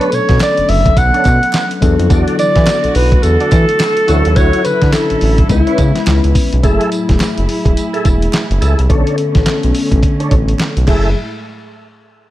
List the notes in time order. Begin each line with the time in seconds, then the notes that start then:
Already playing: D3 F#3 A3 B3 C#4 D4 A4 B4 C#5
0.01 closed hi-hat
0.12 B2 C#5, closed hi-hat, tambourine
0.29 B2, kick, snare, closed hi-hat
0.40 D5, snare, clap, closed hi-hat, tambourine
0.57 F#1, closed hi-hat
0.69 F#1 E5, open hi-hat
0.86 kick, closed hi-hat
0.97 B1 F#5, kick, closed hi-hat, tambourine
1.13 D4 A4 C#5, closed hi-hat
1.25 B2, kick, clap, closed hi-hat, tambourine
1.43 closed hi-hat
1.53 snare, clap, closed hi-hat, tambourine
1.55 clap
1.71 closed hi-hat
1.80 E2 D3 F#3 A3 B3 D4 E4 F#4 A4, kick, closed hi-hat, tambourine
1.99 F2, closed hi-hat
2.09 E2 F#4 A4 D5, kick, closed hi-hat, tambourine
2.28 closed hi-hat
2.39 E3 D5, closed hi-hat, tambourine
2.56 E3, kick, snare, closed hi-hat
2.67 snare, clap, closed hi-hat, tambourine
2.84 B1, closed hi-hat
2.95 B1 B4, open hi-hat
3.12 kick, closed hi-hat
3.23 E2 A4, closed hi-hat, tambourine
3.40 F#4 A4 D5, closed hi-hat
3.52 E3, kick, clap, closed hi-hat, tambourine
3.69 closed hi-hat
3.79 snare, clap, closed hi-hat, tambourine
3.97 closed hi-hat
4.07 D2 D3 E3 F#3 C#4 D4 E4 F#4 A4 C#5, closed hi-hat, tambourine
4.14 F#3
4.25 D#2, closed hi-hat
4.36 D2 E4 F#4 C#5, kick, closed hi-hat, tambourine
4.53 closed hi-hat
4.64 D3 B4, closed hi-hat, tambourine
4.82 D3, kick, snare, closed hi-hat
4.92 A4, snare, clap, closed hi-hat, tambourine
5.10 A1, closed hi-hat
5.21 A1, open hi-hat
5.38 kick, closed hi-hat
5.49 C#2 G#3 B3 C#4 E4 B4, kick, closed hi-hat, tambourine
5.67 E4 B4 C#5, closed hi-hat
5.78 C#3, kick, closed hi-hat, tambourine
5.95 snare, closed hi-hat
6.07 C#2, snare, clap, closed hi-hat, tambourine
6.24 C#2, closed hi-hat
6.35 kick, open hi-hat, tambourine
6.53 B1, closed hi-hat
6.62 F#1 A2 F#3 A3 E4 G#4 A4 E5, kick, closed hi-hat, tambourine
6.81 closed hi-hat
6.92 closed hi-hat, tambourine
7.09 E1, kick, snare, closed hi-hat
7.20 snare, clap, closed hi-hat, tambourine
7.38 F#1, closed hi-hat
7.49 open hi-hat
7.65 E1, kick, closed hi-hat
7.77 closed hi-hat, tambourine
7.93 G#4 A4 E5, closed hi-hat
8.05 E1, kick, closed hi-hat, tambourine
8.22 closed hi-hat
8.33 snare, clap, closed hi-hat, tambourine
8.50 F#1, closed hi-hat
8.61 C#2 G#4 A4 E5, closed hi-hat, tambourine
8.79 C2, closed hi-hat
8.89 B1 D3 A3 B3 C#4 D4 A4 C#5, kick, closed hi-hat
9.07 closed hi-hat
9.18 closed hi-hat
9.35 A1, kick, snare, closed hi-hat
9.46 snare, clap, closed hi-hat
9.63 B1, closed hi-hat
9.75 open hi-hat
9.91 A1, kick, closed hi-hat
10.03 kick, closed hi-hat
10.20 D4 A4 C#5, closed hi-hat
10.31 A1, kick, closed hi-hat
10.48 closed hi-hat
10.59 snare, clap, closed hi-hat
10.77 B1, closed hi-hat
10.87 F#1 A2 F#3 G#3 A3 E4 G#4 A4 E5, kick, clap, crash